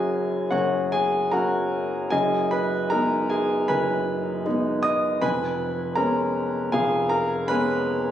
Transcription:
0.00 0.48 F#1 medium
0.00 0.48 F#2 medium
0.00 0.48 F#3 soft
0.00 0.48 C#4 soft
0.00 0.49 F#4 medium
0.00 0.48 G#4 medium
0.00 1.33 A#4 medium
0.00 0.51 F#5 medium
0.00 0.52 G#5 medium
0.00 1.31 A#5 medium
0.51 2.09 F#1 medium
0.51 2.09 F#2 medium
0.51 0.90 F#4 medium
0.51 0.90 C#5 medium
0.51 0.92 F#5 medium
0.92 1.30 G#4 medium
0.92 1.33 G#5 medium
1.31 2.09 F#3 soft
1.31 2.09 C#4 soft
1.31 2.09 F#4 medium
1.31 2.09 A#4 medium
1.31 2.09 F#5 medium
1.31 2.12 A#5 medium
2.10 3.65 F#1 medium
2.10 3.65 F#2 medium
2.10 2.49 G#4 medium
2.10 2.49 D#5 medium
2.10 2.51 G#5 medium
2.51 2.89 B4 medium
2.51 2.91 B5 medium
2.90 3.66 G#3 soft
2.90 3.66 B3 medium
2.90 3.66 D#4 medium
2.90 3.28 A#4 medium
2.90 3.30 A#5 medium
3.30 3.67 G#4 medium
3.30 3.68 G#5 medium
3.68 5.19 F#1 medium
3.68 5.19 F#2 medium
3.68 4.42 B4 medium
3.68 4.42 G#5 medium
3.68 4.46 B5 medium
4.46 5.19 G#3 soft
4.46 5.19 B3 soft
4.46 5.19 D#4 medium
4.83 5.20 D#5 medium
4.83 5.22 D#6 loud
5.22 6.69 F1 medium
5.22 6.69 F2 medium
5.22 5.93 B4 medium
5.22 5.93 G#5 medium
5.22 5.97 B5 loud
5.95 6.69 G#3 medium
5.95 6.69 B3 soft
5.95 6.70 C#4 medium
5.95 6.69 A#4 medium
5.95 6.73 A#5 medium
6.72 8.11 F1 medium
6.72 8.11 F2 medium
6.72 7.09 G#4 medium
6.72 7.09 F5 medium
6.72 7.11 G#5 medium
7.09 7.47 A#4 medium
7.09 7.49 A#5 loud
7.48 8.11 G#3 medium
7.48 8.11 B3 medium
7.48 8.11 C#4 medium
7.48 8.11 B4 medium
7.48 8.11 G#5 medium
7.48 8.11 B5 loud

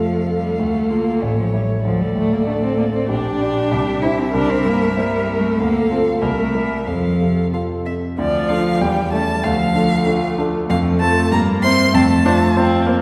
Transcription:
0.00 0.55 F2 soft
0.00 0.15 C3 soft
0.00 0.38 F3 medium
0.00 0.25 A3 soft
0.00 0.25 F4 soft
0.00 0.25 A4 soft
0.00 1.83 A4 medium
0.00 1.24 F5 soft
0.29 0.59 A3 soft
0.39 0.61 G3 medium
0.59 1.20 D2 medium
0.59 0.91 A3 medium
0.90 1.22 A#3 medium
0.90 1.19 F4 soft
0.90 1.19 A4 soft
1.21 1.83 A1 medium
1.21 1.37 A3 medium
1.21 1.85 C#5 soft
1.38 1.53 F3 medium
1.53 1.61 G3 medium
1.53 1.81 E4 soft
1.53 1.81 C#5 soft
1.84 3.05 D2 soft
1.84 2.03 F3 medium
1.84 3.06 A4 medium
1.84 3.73 D5 soft
2.01 2.16 G3 medium
2.15 2.65 A2 soft
2.15 2.34 A3 medium
2.33 2.46 A#3 medium
2.47 2.74 A3 soft
2.47 2.53 A3 medium
2.47 2.75 D4 soft
2.47 2.75 D5 medium
2.63 2.77 C4 medium
2.78 3.08 A3 soft
2.78 2.84 A#3 medium
2.94 3.09 C4 medium
3.09 3.69 A#1 medium
3.09 4.03 D4 medium
3.09 4.31 G4 medium
3.41 3.68 D4 soft
3.41 3.68 D5 medium
3.71 4.32 C2 medium
3.71 5.60 E5 medium
4.02 4.21 E4 medium
4.02 4.31 E4 soft
4.02 4.31 C5 medium
4.20 4.34 C4 medium
4.34 5.55 C2 medium
4.34 4.51 D4 loud
4.34 5.57 A#4 medium
4.50 4.69 C4 medium
4.65 5.15 G2 medium
4.65 4.84 A#3 medium
4.83 4.95 A3 medium
4.96 5.40 G3 medium
4.96 5.24 A#3 soft
4.96 5.24 E4 medium
4.96 5.25 C5 medium
5.27 5.59 A#3 soft
5.39 5.62 A3 medium
5.59 6.21 D2 medium
5.59 5.91 A#3 medium
5.59 6.24 A4 medium
5.59 6.22 F5 medium
5.91 6.00 C4 medium
5.91 6.19 F4 soft
5.91 6.19 A4 soft
6.21 6.85 C2 medium
6.21 6.28 A#3 medium
6.21 6.89 A#4 medium
6.21 6.89 E5 medium
6.39 6.56 A3 medium
6.54 6.85 G3 medium
6.54 6.84 E4 soft
6.54 6.84 A#4 soft
6.86 8.14 F2 soft
6.86 7.51 F3 medium
6.86 7.98 A4 medium
6.86 7.46 F5 soft
7.21 7.73 C3 soft
7.53 7.83 C4 soft
7.53 7.83 F4 soft
7.53 7.83 A4 soft
7.53 7.62 F5 soft
7.86 8.19 C4 soft
7.86 7.94 E5 medium
8.18 8.49 D2 medium
8.18 8.26 D3 medium
8.18 8.83 F3 medium
8.18 8.51 D5 medium
8.48 8.82 F3 medium
8.48 8.78 D4 soft
8.48 8.79 F4 soft
8.48 8.79 A4 soft
8.48 8.83 F5 medium
8.81 9.12 E2 medium
8.81 9.12 G3 medium
8.81 9.44 G3 medium
8.81 9.12 G5 medium
9.12 9.21 A3 medium
9.12 9.41 C#4 soft
9.12 9.41 E4 soft
9.12 9.41 A4 medium
9.12 9.45 A5 medium
9.44 9.74 D2 medium
9.44 10.36 F3 medium
9.44 9.53 A3 medium
9.44 10.38 F5 medium
9.75 10.68 A3 medium
9.75 10.04 D4 soft
9.75 10.04 F4 soft
9.75 10.04 A4 medium
10.06 10.35 D4 medium
10.06 10.35 F4 medium
10.06 10.35 A4 medium
10.38 10.67 D4 soft
10.38 10.67 F4 soft
10.38 10.67 A4 medium
10.68 11.00 F2 medium
10.68 11.03 F3 medium
10.68 11.33 A3 medium
10.68 10.78 F5 medium
11.00 11.31 A3 medium
11.00 11.29 C4 medium
11.00 11.29 F4 medium
11.00 11.30 A4 medium
11.00 11.31 A5 loud
11.32 11.62 G2 medium
11.32 11.94 A#3 medium
11.32 11.40 A#3 medium
11.32 11.40 A#5 medium
11.63 11.91 C4 medium
11.63 11.94 C4 medium
11.63 11.91 E4 medium
11.63 11.92 C5 medium
11.63 11.96 C6 loud
11.94 12.24 F2 medium
11.94 12.86 A3 loud
11.94 12.02 C4 medium
11.94 12.88 A5 loud
12.25 12.53 C4 medium
12.25 12.33 D4 medium
12.25 12.53 F4 medium
12.25 12.54 C5 medium
12.56 12.88 C4 medium
12.56 12.84 C4 medium
12.56 12.84 F4 medium
12.56 12.85 C5 medium
12.86 13.02 A#3 medium
12.86 13.02 C4 medium
12.86 13.02 F4 medium
12.86 13.02 C5 medium

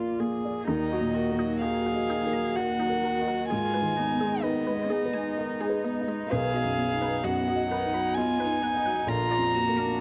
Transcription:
0.00 0.64 A#1 soft
0.00 0.20 A#3 soft
0.00 0.66 A#3 medium
0.00 0.22 F4 soft
0.00 0.69 F4 medium
0.00 0.71 F4 soft
0.00 0.45 D5 soft
0.00 0.70 D5 medium
0.20 0.58 A#3 soft
0.20 0.68 G#4 soft
0.45 0.68 D5 soft
0.66 3.46 D#2 soft
0.66 0.93 D#3 soft
0.66 3.46 A#3 medium
0.66 0.82 D#4 medium
0.66 1.15 D#4 medium
0.66 3.46 F#4 medium
0.66 1.58 D#5 medium
0.66 6.26 D#5 medium
0.91 1.16 F#3 soft
0.91 1.06 F#4 medium
1.01 1.51 A#2 soft
1.14 1.40 D#3 soft
1.14 1.63 F#4 soft
1.32 1.82 A#3 soft
1.39 1.64 F#3 soft
1.39 1.53 D#4 medium
1.61 1.88 D#3 soft
1.61 1.77 F#4 medium
1.61 2.13 F#4 soft
1.61 2.57 G#4 medium
1.61 2.57 F5 medium
1.86 2.11 F#3 soft
1.86 2.01 F#4 medium
1.95 2.45 D#5 soft
2.09 2.35 D#3 soft
2.09 2.24 D#4 medium
2.26 2.76 A#4 soft
2.33 2.59 F#3 soft
2.33 2.47 D#5 medium
2.55 2.83 D#3 soft
2.55 3.50 F#4 medium
2.55 3.47 F#5 medium
2.55 3.07 F#5 soft
2.79 3.06 F#3 soft
2.79 2.94 D#4 medium
2.89 3.39 A#4 soft
3.04 3.29 D#3 soft
3.04 3.18 A#4 medium
3.20 3.51 D#5 soft
3.27 3.51 F#3 soft
3.27 3.41 A#4 medium
3.48 6.28 G#2 soft
3.48 3.77 D#3 soft
3.48 9.08 B3 medium
3.48 9.08 D#4 medium
3.48 3.97 F4 medium
3.48 3.64 G#4 medium
3.48 4.43 G#5 medium
3.74 4.00 G#3 soft
3.74 3.88 B4 medium
3.82 4.31 D#3 soft
3.96 4.23 B3 soft
3.96 4.45 D#4 medium
4.13 4.63 B3 soft
4.21 4.45 G#3 soft
4.21 4.34 G#4 medium
4.42 4.69 D#3 soft
4.42 4.92 B3 soft
4.42 4.94 D#4 soft
4.42 4.58 B4 medium
4.42 5.83 D#5 medium
4.67 4.91 G#3 soft
4.67 4.81 B4 medium
4.75 5.25 D#5 soft
4.90 5.15 B3 medium
4.90 6.32 D#4 medium
4.90 5.04 G#4 medium
5.06 5.56 B4 soft
5.13 5.39 G#3 soft
5.13 5.28 G#5 medium
5.37 5.62 D#3 soft
5.37 5.88 D#5 soft
5.60 5.85 G#3 soft
5.60 5.75 G#4 medium
5.69 6.19 B4 soft
5.84 6.09 B3 medium
5.84 5.98 D#5 medium
6.01 6.32 D#5 soft
6.07 6.29 G#3 soft
6.07 6.22 D#5 medium
6.29 9.05 B1 medium
6.29 6.55 D#3 soft
6.29 7.25 G#4 medium
6.29 6.45 B4 medium
6.29 9.04 D#5 medium
6.29 7.26 F5 medium
6.54 6.79 F#3 medium
6.54 6.69 D#5 medium
6.63 7.13 F#2 soft
6.77 7.02 B3 soft
6.93 7.43 D#4 soft
7.00 7.25 D#4 soft
7.00 7.15 B4 medium
7.23 7.74 F#2 medium
7.23 7.48 B3 soft
7.23 7.70 F#4 medium
7.23 7.38 D#5 medium
7.23 8.16 F#5 medium
7.47 7.72 F#3 soft
7.47 7.62 D#5 medium
7.55 8.04 D#5 soft
7.70 7.95 D#3 medium
7.70 8.19 D#4 medium
7.70 7.85 B4 medium
7.86 8.35 D#4 soft
7.94 8.18 F#3 medium
7.94 8.08 B5 medium
8.15 8.40 B3 medium
8.15 8.62 F4 medium
8.15 8.66 D#5 medium
8.15 9.10 G#5 medium
8.39 8.64 D#4 medium
8.39 8.54 B4 medium
8.46 8.96 D#4 medium
8.62 8.87 B3 medium
8.62 9.09 D#4 medium
8.62 8.77 F#5 medium
8.76 9.07 D#5 medium
8.85 9.08 F#3 medium
8.85 8.99 F#5 medium
9.06 10.01 A#1 medium
9.06 9.33 D3 medium
9.06 10.01 A#3 medium
9.06 9.55 F4 medium
9.06 9.22 A#4 medium
9.06 10.01 D5 medium
9.06 10.01 F5 medium
9.06 10.01 A#5 medium
9.31 9.56 F3 medium
9.31 9.45 D5 medium
9.38 9.88 F2 soft
9.54 9.79 A#3 medium
9.54 10.01 F#4 medium
9.69 10.01 A#3 soft
9.77 10.01 D4 medium
9.77 9.91 A#4 medium

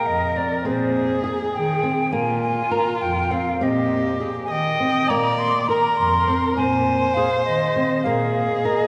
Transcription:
0.00 0.26 A#4 medium
0.00 0.66 A#4 medium
0.06 0.53 F2 medium
0.06 0.38 D#5 medium
0.36 0.61 C4 medium
0.36 0.65 D5 medium
0.65 1.36 A#2 medium
0.65 1.15 C4 medium
0.65 2.14 G#4 medium
0.65 1.21 C5 medium
1.24 1.74 G#4 medium
1.54 2.02 D#3 medium
1.54 2.14 G5 medium
1.83 2.08 C4 medium
2.12 2.84 A#2 medium
2.12 2.63 A#3 medium
2.12 3.61 F4 medium
2.12 2.42 G#5 medium
2.43 2.73 G#5 medium
2.71 3.22 A#4 medium
2.71 3.03 A#5 medium
3.01 3.49 F2 medium
3.01 3.33 G5 medium
3.31 3.56 C4 medium
3.31 3.65 F5 medium
3.61 4.32 A#2 medium
3.61 4.11 C4 medium
3.61 4.47 G4 medium
3.61 4.21 D#5 medium
4.20 4.70 G#4 medium
4.44 4.53 G#5 medium
4.50 4.97 D#3 medium
4.50 5.12 D#5 medium
4.50 5.10 G5 medium
4.80 5.05 C4 medium
5.09 5.80 A#2 medium
5.09 5.60 A#3 medium
5.09 5.69 D5 medium
5.09 5.40 A#5 medium
5.39 5.69 C6 medium
5.68 6.19 A#4 medium
5.68 6.60 A#4 medium
5.68 5.98 A#5 medium
5.97 6.46 F2 medium
5.97 6.56 C6 medium
6.27 6.53 C4 medium
6.56 7.29 A#2 medium
6.56 7.07 C4 medium
6.56 8.06 C5 medium
6.56 7.16 G#5 medium
7.14 7.67 G#4 medium
7.14 7.44 F5 medium
7.45 7.94 D#3 medium
7.45 8.01 D#5 medium
7.76 8.01 C4 medium
8.03 8.77 A#2 medium
8.03 8.56 A#3 medium
8.03 8.87 G#4 medium
8.03 8.32 F5 medium
8.34 8.66 F5 medium
8.65 8.87 A#4 medium
8.65 8.87 D#5 medium

